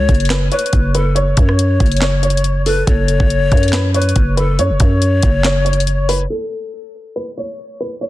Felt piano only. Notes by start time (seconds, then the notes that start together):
Already playing: A4
0.30 B4
0.52 C#5
0.95 B4
1.15 C#5
2.02 C#5
2.23 C#5
2.66 A4
2.87 A4
3.73 B4
3.94 C#5
4.37 B4
4.59 C#5
5.45 C#5
5.65 C#5
6.09 B4
6.30 A4
7.16 B4
7.37 C#5
7.80 B4
8.01 C#5